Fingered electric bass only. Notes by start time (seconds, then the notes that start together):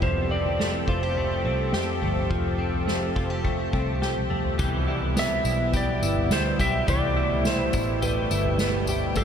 0.02 F1
0.88 F1
1.45 C2
1.73 F2
2.02 G1
2.31 F1
3.16 F1
3.73 C2
4.59 C2
5.45 B1
6.02 G1
6.31 D2
6.60 B1
6.88 C2
7.73 A1
8.31 G1
9.16 G1